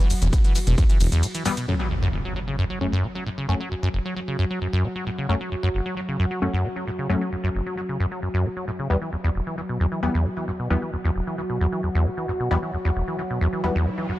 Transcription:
Already playing: synth drone F#3 F#4
0.10 acid bass E2, open hi-hat, ride, shaker
0.22 detuned saw bass E1, acid bass E2, closed hi-hat, ride, shaker
0.33 acid bass E1, kick, closed hi-hat, ride, shaker
0.44 acid bass E3, closed hi-hat, ride, shaker
0.55 acid bass E3, open hi-hat, ride, shaker
0.67 detuned saw bass E1, acid bass B2, closed hi-hat, ride, shaker
0.78 acid bass E2, kick, closed hi-hat, ride, shaker
0.90 acid bass E3, closed hi-hat, ride, shaker
1.01 detuned saw bass E1, acid bass E2, open hi-hat, ride, shaker
1.12 acid bass E2, closed hi-hat, ride, shaker
1.23 acid bass B2, closed hi-hat, ride, shaker
1.35 acid bass E3, closed hi-hat, ride, shaker
1.46 acid bass G2, supersaw synth E3 G3 B3, open hi-hat, ride, shaker
1.57 acid bass B2, closed hi-hat, ride, shaker
1.68 acid bass F#2, supersaw synth F#3 A3 C#4, synth drone F#3 F#4, impact
1.80 acid bass F#3
1.91 acid bass F#2
2.02 acid bass F#2
2.13 acid bass F#1
2.25 acid bass F#3
2.36 acid bass F#3
2.47 acid bass C#3
2.58 acid bass F#2
2.70 acid bass F#3
2.81 acid bass F#2, supersaw synth F#3 A3 C#4
2.92 acid bass F#2
3.04 acid bass C#3
3.15 acid bass F#3
3.26 acid bass A2
3.38 acid bass C#3
3.49 acid bass F#2, supersaw synth F#3 A3 C#4
3.60 acid bass F#3
3.71 acid bass F#2
3.83 acid bass F#2
3.94 acid bass F#1
4.05 acid bass F#3
4.16 acid bass F#3
4.28 acid bass C#3
4.39 acid bass F#2
4.50 acid bass F#3
4.61 acid bass F#2
4.73 acid bass F#2
4.84 acid bass C#3
4.95 acid bass F#3
5.06 acid bass A2
5.18 acid bass C#3
5.29 acid bass F#2, supersaw synth F#3 A3 C#4
5.41 acid bass F#3
5.52 acid bass F#2
5.63 acid bass F#2
5.74 acid bass F#1
5.86 acid bass F#3
5.97 acid bass F#3
6.08 acid bass C#3
6.19 acid bass F#2
6.31 acid bass F#3
6.42 acid bass F#2, supersaw synth F#3 A3 C#4
6.53 acid bass F#2
6.64 acid bass C#3
6.76 acid bass F#3
6.87 acid bass A2
6.99 acid bass C#3
7.10 acid bass F#2, supersaw synth F#3 A3 C#4
7.21 acid bass F#3
7.32 acid bass F#2
7.44 acid bass F#2
7.55 acid bass F#1
7.66 acid bass F#3
7.77 acid bass F#3
7.89 acid bass C#3
8.00 acid bass F#2
8.11 acid bass F#3
8.22 acid bass F#2
8.34 acid bass F#2
8.45 acid bass C#3
8.56 acid bass F#3
8.67 acid bass A2
8.79 acid bass C#3
8.90 acid bass E2, supersaw synth E3 G3 B3
9.02 acid bass E3
9.13 acid bass E2
9.24 acid bass E2
9.35 acid bass E1
9.47 acid bass E3
9.58 acid bass E3
9.69 acid bass B2
9.80 acid bass E2
9.92 acid bass E3
10.03 acid bass E2, supersaw synth E3 G3 B3
10.14 acid bass E2
10.25 acid bass B2
10.37 acid bass E3
10.48 acid bass G2
10.59 acid bass B2
10.70 acid bass E2, supersaw synth E3 G3 B3
10.82 acid bass E3
10.93 acid bass E2
11.05 acid bass E2
11.16 acid bass E1
11.27 acid bass E3
11.38 acid bass E3
11.50 acid bass B2
11.61 acid bass E2
11.72 acid bass E3
11.83 acid bass E2
11.95 acid bass E2
12.06 acid bass B2
12.17 acid bass E3
12.28 acid bass G2
12.40 acid bass B2
12.51 acid bass E2, supersaw synth E3 G3 B3, riser
12.62 acid bass E3
12.73 acid bass E2
12.85 acid bass E2
12.96 acid bass E1
13.08 acid bass E3
13.19 acid bass E3
13.30 acid bass B2
13.41 acid bass E2
13.53 acid bass E3
13.64 acid bass E2, supersaw synth E3 G3 B3
13.75 acid bass E2
13.86 acid bass B2
13.98 acid bass E3
14.09 acid bass G2

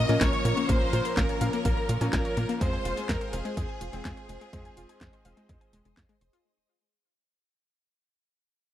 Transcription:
Already playing: string machine C#4 A#4 F5 A#5, violin section D#5
0.09 electric grand piano A#2 F3 A#3 C#4 A#4, analog synth bass A#2, synth arpeggio sound C#4, closed hi-hat
0.21 analog synth bass A#1, electric grand piano A#2 F3 A#3 C#4 A#4, synth arpeggio sound C#4, violin section C#5, kick, snare, clap, closed hi-hat
0.33 synth arpeggio sound C#5, closed hi-hat
0.45 analog synth bass A#2, synth arpeggio sound A#3, closed hi-hat
0.57 synth arpeggio sound A#3, closed hi-hat
0.69 analog synth bass A#1, electric grand piano A#2 F3 A#3 C#4 A#4, synth arpeggio sound A#3, violin section C5, kick, closed hi-hat
0.81 synth arpeggio sound A#5
0.93 analog synth bass A#2, synth arpeggio sound F4, closed hi-hat
1.05 synth arpeggio sound A#5, closed hi-hat
1.17 analog synth bass A#1, synth arpeggio sound A#3, violin section A#4, kick, snare, clap, closed hi-hat
1.29 synth arpeggio sound C#5, closed hi-hat
1.41 electric grand piano A#2 F3 A#3 C#4 A#4, analog synth bass A#2, synth arpeggio sound F5, closed hi-hat
1.53 synth arpeggio sound A#3, closed hi-hat
1.65 analog synth bass A#1, synth arpeggio sound A#3, kick, closed hi-hat
1.77 synth arpeggio sound A#5
1.89 analog synth bass A#2, synth arpeggio sound F4, closed hi-hat
2.01 analog synth bass A#2, electric grand piano A#2 F3 A#3 C#4 A#4, synth arpeggio sound C#4, closed hi-hat
2.13 analog synth bass A#1, electric grand piano A#2 F3 A#3 C#4 A#4, synth arpeggio sound C#4, violin section A#4, kick, snare, clap, closed hi-hat
2.25 synth arpeggio sound C#5, closed hi-hat
2.37 analog synth bass A#2, synth arpeggio sound A#3, closed hi-hat
2.49 synth arpeggio sound A#3, closed hi-hat
2.61 analog synth bass F2, synth arpeggio sound G#3, electric grand piano G#3 C4 F4 C5, string machine G#4 C5 C6, violin section C5, kick, closed hi-hat
2.73 synth arpeggio sound G#5
2.85 analog synth bass F1, synth arpeggio sound F4, closed hi-hat
2.97 synth arpeggio sound G#5, snare, closed hi-hat
3.09 analog synth bass F2, synth arpeggio sound G#3, violin section A#4, kick, snare, clap, closed hi-hat
3.21 synth arpeggio sound C5, closed hi-hat
3.33 analog synth bass F1, electric grand piano G#3 C4 F4 C5, violin section G#4, synth arpeggio sound F5, closed hi-hat
3.45 synth arpeggio sound G#3, closed hi-hat
3.57 analog synth bass F2, synth arpeggio sound G#3, kick, closed hi-hat
3.69 synth arpeggio sound G#5
3.81 analog synth bass F1, synth arpeggio sound F4, closed hi-hat
3.93 analog synth bass F1, electric grand piano G#3 C4 F4 C5, synth arpeggio sound C4, closed hi-hat
4.05 analog synth bass F2, electric grand piano G#3 C4 F4 C5, synth arpeggio sound C4, kick, snare, clap, closed hi-hat
4.17 synth arpeggio sound C5, closed hi-hat
4.29 analog synth bass F1, synth arpeggio sound G#3, closed hi-hat
4.41 synth arpeggio sound G#3, closed hi-hat
4.53 analog synth bass F2, electric grand piano G#3 C4 F4 C5, synth arpeggio sound G#3, string machine D#5, kick, closed hi-hat
4.65 synth arpeggio sound G#5, closed hi-hat
4.77 analog synth bass F1, synth arpeggio sound F4, closed hi-hat
4.89 synth arpeggio sound G#5, closed hi-hat
5.01 analog synth bass F2, synth arpeggio sound G#3, kick, snare, clap, closed hi-hat
5.13 synth arpeggio sound C5, closed hi-hat
5.25 analog synth bass F1, electric grand piano G#3 C4 F4 C5, synth arpeggio sound F5, closed hi-hat
5.37 synth arpeggio sound G#3, closed hi-hat
5.49 analog synth bass F2, synth arpeggio sound G#3, kick, closed hi-hat
5.61 synth arpeggio sound G#5, closed hi-hat
5.73 analog synth bass F1, synth arpeggio sound G#3, closed hi-hat
5.85 analog synth bass F1, synth arpeggio sound G#3, closed hi-hat
5.97 analog synth bass F2, synth arpeggio sound F5, kick, snare, clap, closed hi-hat
6.09 synth arpeggio sound G#3, closed hi-hat
6.21 analog synth bass F1, synth arpeggio sound C5, closed hi-hat
6.33 synth arpeggio sound F4, closed hi-hat

